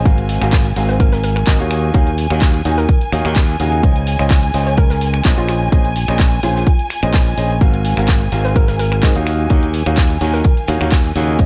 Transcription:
0.05 fingered electric bass G#1, grand piano G#2 C4 F#4 A#4 F5, violin section G#5, kick, closed hi-hat, ride
0.18 closed hi-hat, ride
0.29 open hi-hat, ride
0.41 fingered electric bass G#1, grand piano G#2 C4 F#4 A#4 F5, finger snap, snare
0.52 kick, snare, clap, closed hi-hat, ride
0.65 closed hi-hat
0.76 fingered electric bass G#1, grand piano G#2 C4 F#4 A#4 F5, open hi-hat, ride
0.89 synth pluck C5, snare
1.00 synth pluck A#4, kick, closed hi-hat, ride
1.12 synth pluck A#4, snare, closed hi-hat
1.24 synth pluck A#4, open hi-hat, ride
1.36 synth pluck A#4, finger snap
1.47 fingered electric bass G#1, grand piano C4 F#4 A#4 D#5, kick, snare, clap, closed hi-hat, ride
1.60 fingered electric bass D#2, grand piano D#3 D#4 F#4 C#5 F5, closed hi-hat
1.71 finger snap, open hi-hat, ride
1.94 fingered electric bass D#2, grand piano D#3 D#4 F#4 C#5 F5, kick, closed hi-hat, ride
2.07 closed hi-hat
2.18 open hi-hat, ride
2.30 fingered electric bass D#2, grand piano D#3 D#4 F#4 C#5 F5, finger snap
2.42 kick, snare, clap, closed hi-hat, ride
2.54 closed hi-hat
2.65 fingered electric bass D#2, grand piano D#3 D#4 F#4 C#5 G#5, open hi-hat, ride
2.77 synth pluck A#4, snare
2.88 kick, closed hi-hat, ride
3.01 closed hi-hat
3.12 fingered electric bass D#2, grand piano D#3 D#4 F#4 C#5 F5, finger snap, open hi-hat, ride
3.25 fingered electric bass D#2, grand piano D#3 D#4 F#4 C#5 F5, finger snap
3.36 kick, snare, clap, closed hi-hat, ride
3.48 snare, closed hi-hat
3.60 fingered electric bass D#2, grand piano C#3 D#4 F#4 C#5 F5, open hi-hat, ride
3.72 ride
3.83 fingered electric bass C#2, grand piano C#3 C#4 F4 C5 D#5, kick, closed hi-hat, ride
3.95 closed hi-hat, ride
4.07 open hi-hat, ride
4.19 fingered electric bass C#2, grand piano C#3 C#4 F4 C5 D#5, finger snap, snare
4.30 kick, snare, clap, closed hi-hat, ride
4.43 closed hi-hat
4.54 fingered electric bass C#2, grand piano C#3 C#4 F4 C5 D#5, open hi-hat, ride
4.67 synth pluck C#5, snare
4.77 synth pluck A#4, kick, closed hi-hat, ride
4.90 synth pluck A#4, snare, closed hi-hat
5.01 open hi-hat, ride
5.14 finger snap
5.25 fingered electric bass A#1, grand piano A#2 C#4 F4 C5 D#5, kick, snare, clap, closed hi-hat, ride
5.37 fingered electric bass A#1, grand piano A#2 C#4 G#4 C5 D#5, synth pluck F4, closed hi-hat
5.49 synth pluck F4, finger snap, open hi-hat, ride
5.72 fingered electric bass A#1, grand piano A#2 C#4 G#4 C5 D#5, kick, closed hi-hat, ride
5.85 closed hi-hat
5.96 open hi-hat, ride
6.08 fingered electric bass A#1, grand piano A#2 C#4 G#4 C5 D#5, finger snap
6.19 kick, snare, clap, closed hi-hat, ride
6.32 closed hi-hat
6.43 fingered electric bass A#1, grand piano A#2 C#4 G#4 C5 G#5, synth pluck F4, open hi-hat, ride
6.56 snare
6.67 kick, closed hi-hat, ride
6.79 closed hi-hat
6.90 finger snap, open hi-hat, ride
7.03 fingered electric bass A#1, grand piano A#2 C#4 G#4 C5 D#5, finger snap, closed hi-hat
7.13 kick, snare, clap, closed hi-hat, ride
7.26 snare, closed hi-hat
7.38 fingered electric bass A#1, grand piano C#4 G#4 C5 D#5, open hi-hat, ride
7.50 ride
7.61 fingered electric bass G#1, grand piano G#2 C4 F#4 A#4 F5, kick, closed hi-hat, ride
7.74 closed hi-hat, ride
7.85 open hi-hat, ride
7.97 fingered electric bass G#1, grand piano G#2 C4 F#4 A#4 F5, finger snap, snare
8.08 kick, snare, clap, closed hi-hat, ride
8.21 closed hi-hat
8.32 fingered electric bass G#1, grand piano G#2 C4 F#4 A#4 F5, open hi-hat, ride
8.44 synth pluck C5, snare
8.56 synth pluck A#4, kick, closed hi-hat, ride
8.68 synth pluck A#4, snare, closed hi-hat
8.79 synth pluck A#4, open hi-hat, ride
8.92 synth pluck A#4, finger snap
9.03 fingered electric bass G#2, grand piano C4 F#4 A#4 D#5, kick, snare, clap, closed hi-hat, ride
9.15 fingered electric bass D#2, grand piano D#3 D#4 F#4 C#5 F5, closed hi-hat
9.27 finger snap, open hi-hat, ride
9.50 fingered electric bass D#2, grand piano D#3 D#4 F#4 C#5 F5, kick, closed hi-hat, ride
9.63 closed hi-hat
9.73 open hi-hat, ride
9.86 fingered electric bass D#2, grand piano D#3 D#4 F#4 C#5 F5, finger snap
9.97 kick, snare, clap, closed hi-hat, ride
10.10 closed hi-hat
10.21 fingered electric bass D#2, grand piano D#3 D#4 F#4 C#5 G#5, open hi-hat, ride
10.34 synth pluck A#4, snare
10.44 kick, closed hi-hat, ride
10.57 closed hi-hat
10.68 fingered electric bass D#2, grand piano D#3 D#4 F#4 C#5 F5, finger snap, open hi-hat, ride
10.81 fingered electric bass D#2, grand piano D#3 D#4 F#4 C#5 F5, finger snap
10.91 kick, snare, clap, closed hi-hat, ride
11.04 snare, closed hi-hat
11.15 fingered electric bass D#2, grand piano C#3 D#4 F#4 C#5 F5, open hi-hat, ride
11.28 ride
11.39 fingered electric bass C#2, grand piano C#3 C#4 C5 D#5, kick, closed hi-hat, ride

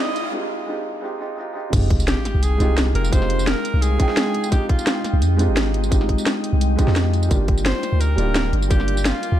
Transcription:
Already playing: ambient pad G#3 D#4 F5 G5, felt piano G#3 C4 D#4 F4 G4 G5, riser
0.00 alto saxophone D#5
0.16 closed hi-hat, tambourine
0.31 felt piano G#3 C4 D#4 F4
0.36 felt piano G4
0.66 felt piano G#3 C4 D#4 F4
0.71 felt piano G4
1.00 felt piano G#3 C4 D#4 F4
1.05 felt piano G4
1.18 felt piano G#3 C4 D#4 F4
1.23 felt piano G4
1.35 felt piano G#3 C4 D#4 F4
1.41 felt piano G4
1.53 felt piano G#3 C4 D#4 F4
1.58 felt piano G4
1.70 808-style bass F1, felt piano G#3 C4 D#4, ambient pad G#3 D#4 F5 G5, kick, closed hi-hat, crash, tambourine, sub drop
1.74 felt piano F4 G4
1.90 kick, closed hi-hat
2.00 tambourine
2.08 alto saxophone G4, snare, closed hi-hat, tambourine
2.25 snare, closed hi-hat, tambourine
2.35 808-style bass C2
2.43 alto saxophone G#4, closed hi-hat, tambourine
2.57 808-style bass C2, felt piano G#3 C4 D#4 F4, closed hi-hat, tambourine
2.63 felt piano G4
2.78 snare, closed hi-hat, tambourine
2.95 808-style bass F1, alto saxophone A#4, closed hi-hat
3.05 tambourine
3.10 felt piano G#3 C4 D#4 F4, alto saxophone C5, kick, closed hi-hat, tambourine
3.15 felt piano G4
3.22 snare
3.30 closed hi-hat
3.39 tambourine
3.47 alto saxophone A#4, snare, closed hi-hat, tambourine
3.65 closed hi-hat, tambourine
3.74 808-style bass C2
3.82 alto saxophone G#4, closed hi-hat, tambourine
3.97 felt piano G#3 C4 D#4 F4, kick, closed hi-hat, tambourine
4.02 felt piano G5
4.09 snare
4.17 snare, closed hi-hat, tambourine
4.34 closed hi-hat
4.44 tambourine
4.49 felt piano G#3 C4 D#4 F4, alto saxophone G4, ambient pad D#5, kick, closed hi-hat, tambourine
4.54 felt piano G4
4.69 alto saxophone F4, kick, closed hi-hat
4.79 tambourine
4.87 snare, closed hi-hat, tambourine
5.04 snare, closed hi-hat, tambourine
5.13 808-style bass C2
5.21 808-style bass F2, closed hi-hat, tambourine
5.37 felt piano G#3 C4 D#4 F4, closed hi-hat, tambourine
5.42 felt piano G4
5.48 808-style bass G#1
5.57 snare, closed hi-hat, tambourine
5.74 closed hi-hat
5.84 tambourine
5.89 felt piano G#3 C4 D#4 F4, kick, closed hi-hat, tambourine
5.94 felt piano G4
6.01 snare
6.09 kick, closed hi-hat
6.18 tambourine
6.26 snare, closed hi-hat, tambourine
6.44 closed hi-hat, tambourine
6.53 808-style bass C2
6.61 closed hi-hat, tambourine
6.76 felt piano G#3 C4 D#4 F4, kick, closed hi-hat, tambourine
6.81 felt piano G4
6.88 808-style bass F2, snare
6.96 snare, closed hi-hat, tambourine
7.13 closed hi-hat, tambourine
7.23 tambourine
7.28 808-style bass G1, felt piano G3 A#3 D4 F4, ambient pad F4 A#4 D5, kick, closed hi-hat, tambourine
7.33 felt piano G4
7.48 kick, closed hi-hat
7.58 tambourine
7.66 alto saxophone C5, snare, closed hi-hat, tambourine
7.83 snare, closed hi-hat, tambourine
7.93 808-style bass D2
8.01 alto saxophone A#4, closed hi-hat, tambourine
8.15 808-style bass D1, felt piano G3 A#3 D4 F4, closed hi-hat, tambourine
8.21 felt piano G4
8.36 snare, closed hi-hat, tambourine
8.53 808-style bass G1, closed hi-hat
8.62 tambourine
8.68 felt piano G3 A#3 D4 F4, alto saxophone G4, kick, closed hi-hat, tambourine
8.73 felt piano G4
8.80 snare
8.88 closed hi-hat
8.97 tambourine
9.05 alto saxophone F4, snare, closed hi-hat, tambourine
9.23 closed hi-hat, tambourine
9.32 808-style bass D2

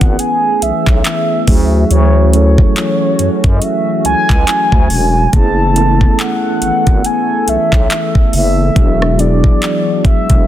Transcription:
Already playing: analog synth pad E3 A3 B3 G#4, tine electric piano A3 B3 C#4 E4 G#4 B4, soft synth lead F#5
0.01 fm bass G#1, kick, closed hi-hat
0.19 soft synth lead G#5, closed hi-hat
0.62 fm bass B1, soft synth lead E5, closed hi-hat
0.87 fm bass B1, kick, clap
1.05 clap, closed hi-hat
1.47 fm bass D2, tine electric piano F#3 A3 C#4 E4 G#4, analog synth pad A3 C#4 F#4, kick, open hi-hat
1.91 fm bass D2, soft synth lead C#5, closed hi-hat
2.33 tine electric piano F#3 A3 C#4 E4 A4, soft synth lead C#5, closed hi-hat
2.58 kick
2.76 clap, closed hi-hat
3.19 fm bass F#2, closed hi-hat, open hi-hat
3.44 fm bass F#2, kick, closed hi-hat
3.56 soft synth lead D#5
3.62 soft synth lead E5, closed hi-hat
4.05 fm bass C#2, soft synth lead G#5, closed hi-hat
4.30 fm bass C#2, kick, clap
4.47 clap, closed hi-hat
4.72 fm bass D2, kick
4.90 fm bass E1, open hi-hat
5.32 fm bass F#1, analog synth pad E3 A3 B3 A4, tine electric piano A3 B3 C#4 E4 G#4, soft synth lead A5, kick, closed hi-hat
5.75 tine electric piano A3 B3 C#4 E4 A4, closed hi-hat
6.01 kick
6.19 soft synth lead F#5, clap, closed hi-hat
6.62 fm bass G#1, closed hi-hat, open hi-hat
6.87 fm bass G#1, kick, closed hi-hat
7.04 soft synth lead G#5, closed hi-hat
7.48 fm bass B1, soft synth lead E5, closed hi-hat
7.73 fm bass B1, kick, clap
7.90 clap, closed hi-hat
8.15 kick
8.33 fm bass F#1, soft synth lead E5, open hi-hat
8.75 fm bass E1, tine electric piano F#3 B3 D4 E4 G#4, analog synth pad G#3 D4 F#4, kick, closed hi-hat
9.02 cross-stick
9.18 tine electric piano F#3 B3 D4 E4 G#4, soft synth lead D5, closed hi-hat
9.44 kick
9.62 clap, closed hi-hat
10.05 fm bass E1, soft synth lead E5, kick, closed hi-hat
10.30 fm bass E1, kick, closed hi-hat

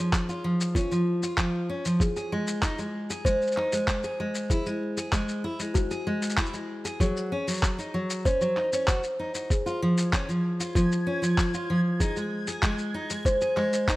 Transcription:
0.00 steel-string acoustic guitar F3
0.13 kick, clap, shaker
0.29 steel-string acoustic guitar F4, shaker
0.44 steel-string acoustic guitar F3
0.60 shaker
0.75 steel-string acoustic guitar C#4, kalimba F4, kick, shaker
0.92 steel-string acoustic guitar F3, shaker
1.23 steel-string acoustic guitar F4, shaker
1.38 steel-string acoustic guitar F3, kick, clap, shaker
1.69 steel-string acoustic guitar C#4
1.85 steel-string acoustic guitar F3, shaker
2.00 kalimba G#4, kick, shaker
2.16 steel-string acoustic guitar G#4, shaker
2.32 steel-string acoustic guitar G#3
2.47 shaker
2.62 steel-string acoustic guitar D#4, kick, clap, shaker
2.78 steel-string acoustic guitar G#3, shaker
3.10 steel-string acoustic guitar G#4, shaker
3.25 steel-string acoustic guitar G#3, kalimba C5, kick, shaker
3.42 shaker
3.47 shaker
3.52 shaker
3.57 steel-string acoustic guitar D#4, clap
3.72 steel-string acoustic guitar G#3, shaker
3.88 kick, clap, shaker
4.03 steel-string acoustic guitar G#4, shaker
4.20 steel-string acoustic guitar G#3
4.35 shaker
4.50 steel-string acoustic guitar E4, kalimba G#4, kick, shaker
4.66 steel-string acoustic guitar G#3, shaker
4.97 steel-string acoustic guitar G#4, shaker
5.12 steel-string acoustic guitar G#3, kick, clap, shaker
5.28 shaker
5.44 steel-string acoustic guitar E4
5.59 steel-string acoustic guitar G#3, shaker
5.74 kalimba F#4, kick, shaker
5.91 steel-string acoustic guitar G#4, shaker
6.07 steel-string acoustic guitar G#3
6.22 shaker
6.30 shaker
6.37 steel-string acoustic guitar E4, kick, clap, shaker
6.46 shaker
6.53 steel-string acoustic guitar G#3, shaker
6.85 steel-string acoustic guitar G#4, shaker
7.00 steel-string acoustic guitar F#3, kalimba G#4, kick, shaker
7.16 shaker
7.32 steel-string acoustic guitar C#4
7.47 steel-string acoustic guitar F#3, shaker
7.50 shaker
7.53 shaker
7.54 shaker
7.57 shaker
7.59 shaker
7.61 kick, clap, shaker
7.63 shaker
7.79 steel-string acoustic guitar D#4, shaker
7.94 steel-string acoustic guitar F#3
8.10 shaker
8.25 steel-string acoustic guitar C#4, kalimba C5, kick, shaker
8.41 steel-string acoustic guitar F#3, shaker
8.57 steel-string acoustic guitar D#4, clap
8.73 steel-string acoustic guitar C#4, shaker
8.88 steel-string acoustic guitar F#4, kick, clap, shaker
9.03 shaker
9.19 steel-string acoustic guitar D#4
9.34 steel-string acoustic guitar D#4, shaker
9.50 kalimba G#4, synth texture G#6, kick, shaker
9.66 steel-string acoustic guitar F4, shaker
9.82 steel-string acoustic guitar F3
9.98 shaker
10.13 steel-string acoustic guitar C#4, kick, clap, shaker
10.29 steel-string acoustic guitar F3, shaker
10.60 steel-string acoustic guitar F4, shaker
10.75 steel-string acoustic guitar F3, kalimba F4, kick, shaker
10.92 shaker
11.07 steel-string acoustic guitar C#4
11.22 steel-string acoustic guitar F3, shaker
11.38 kick, clap, shaker
11.54 steel-string acoustic guitar F4, shaker
11.70 steel-string acoustic guitar F3
12.00 steel-string acoustic guitar D#4, kalimba G#4, kick, shaker
12.16 steel-string acoustic guitar G#3, shaker
12.47 steel-string acoustic guitar G#4, shaker
12.63 steel-string acoustic guitar G#3, kick, clap, shaker
12.78 shaker
12.94 steel-string acoustic guitar D#4
13.10 steel-string acoustic guitar G#3, shaker
13.25 kalimba C5, kick, shaker
13.41 steel-string acoustic guitar G#4, shaker
13.57 steel-string acoustic guitar G#3, clap
13.73 shaker
13.88 steel-string acoustic guitar D#4, kick, clap, shaker

